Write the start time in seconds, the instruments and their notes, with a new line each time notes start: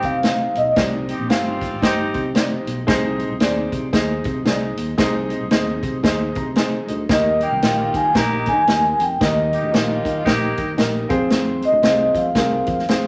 Already playing: saxophone section C4 D#4 G4, grand piano D#4 G4 C5 D#5
0.02 fingered electric bass C3, vibraphone F5, kick, closed hi-hat
0.23 grand piano D#4 G4 C5 D#5, snare, closed hi-hat
0.55 fingered electric bass B1, vibraphone D#5, closed hi-hat
0.72 grand piano C3 D#4 G4, vibraphone D5, snare, closed hi-hat
0.77 fingered electric bass C2, grand piano C5 D#5, vibraphone C5, kick
1.09 saxophone section C4 D#4 G4, closed hi-hat
1.19 fingered electric bass A#1
1.28 fingered electric bass G1, saxophone section G3 C4 F4, grand piano D#4 G4 C5 F5, snare, closed hi-hat
1.61 kick, closed hi-hat
1.72 fingered electric bass G#1
1.82 fingered electric bass G1, saxophone section C4 D#4 G4, grand piano D#4 G4 C5 D#5, kick, snare, closed hi-hat
2.14 fingered electric bass C3, kick, closed hi-hat
2.35 grand piano D#4 G4 C5 D5, snare, closed hi-hat
2.42 grand piano D#5
2.66 fingered electric bass B1, closed hi-hat
2.87 fingered electric bass C2, grand piano C3 D#4 G#4 C5 D#5, kick, snare, closed hi-hat
3.19 closed hi-hat
3.30 fingered electric bass C2
3.40 fingered electric bass D#2, grand piano D#4 G#4 C5 D5, snare, closed hi-hat
3.72 fingered electric bass C3, kick, closed hi-hat
3.93 fingered electric bass D#2, grand piano D#4 G#4 C5 D#5, kick, snare, closed hi-hat
4.24 fingered electric bass C3, kick, closed hi-hat
4.45 fingered electric bass C2, grand piano D#4 G#4 C5 D5, snare, closed hi-hat
4.52 grand piano D#5
4.77 fingered electric bass D#2, closed hi-hat
4.98 fingered electric bass C2, grand piano C3 D#4 G#4 C5 D#5, kick, snare, closed hi-hat
5.30 closed hi-hat
5.41 fingered electric bass C2
5.51 fingered electric bass D#2, grand piano D#4 G#4 C5 D#5, snare, closed hi-hat
5.83 fingered electric bass C3, kick, closed hi-hat
6.03 fingered electric bass D#2, grand piano D#4 G#4 C5 D#5, kick, snare, closed hi-hat
6.35 fingered electric bass C3, grand piano A#5, kick, closed hi-hat
6.55 grand piano D#4 G#4 C5 D#5 G#5, snare, closed hi-hat
6.88 fingered electric bass D2, grand piano D#5, closed hi-hat
7.09 fingered electric bass D#2, grand piano D#3 D#4 G4 A#4 D#5, vibraphone D#5, kick, snare, closed hi-hat
7.41 saxophone section A#3 D#4 G4, vibraphone G5, closed hi-hat
7.51 fingered electric bass C2
7.62 fingered electric bass A#1, saxophone section G3 A#3 F4, grand piano D#4 G4 A#4 D#5, snare, closed hi-hat
7.94 fingered electric bass D#3, vibraphone G#5, kick, closed hi-hat
8.14 fingered electric bass A#1, saxophone section A#3 D#4 G4, grand piano D#4 G4 A#4 D#5, kick, snare, closed hi-hat
8.46 fingered electric bass D#3, vibraphone G#5, kick, closed hi-hat
8.67 fingered electric bass D#2, grand piano D#4 G4 A#4 D#5, snare, closed hi-hat
8.99 fingered electric bass F2, vibraphone G5, closed hi-hat
9.20 fingered electric bass D#2, grand piano D#3 D#4 G4 A#4 D#5, vibraphone D#5, kick, snare, closed hi-hat
9.53 saxophone section A#3 D#4 G4, closed hi-hat
9.63 fingered electric bass D2
9.72 fingered electric bass A#1, saxophone section G3 A#3 F4, grand piano D#4 G4 A#4 D#5, snare, closed hi-hat
10.05 fingered electric bass D#3, kick, closed hi-hat
10.24 fingered electric bass A#1, saxophone section A#3 D#4 G4, grand piano D#4 G4 A#4 D#5, kick, snare, closed hi-hat
10.57 fingered electric bass D#3, kick, closed hi-hat
10.77 fingered electric bass A#1, grand piano D#4 G4 A#4 D#5, snare, closed hi-hat
11.09 fingered electric bass F2, grand piano C4 F4 G#4 C5, kick, closed hi-hat
11.30 vibraphone C5, snare, closed hi-hat
11.62 vibraphone D#5, closed hi-hat
11.72 fingered electric bass D2
11.82 fingered electric bass C2, grand piano C4 F4 G4 C5, snare, closed hi-hat
11.90 grand piano G#4
12.14 fingered electric bass F3, vibraphone F5, kick, closed hi-hat
12.35 fingered electric bass C2, grand piano C4 F4 G#4 A#4, kick, snare, closed hi-hat
12.66 fingered electric bass F3, kick, closed hi-hat
12.79 snare
12.88 fingered electric bass F2, grand piano C4 F4 G#4 C5, snare, closed hi-hat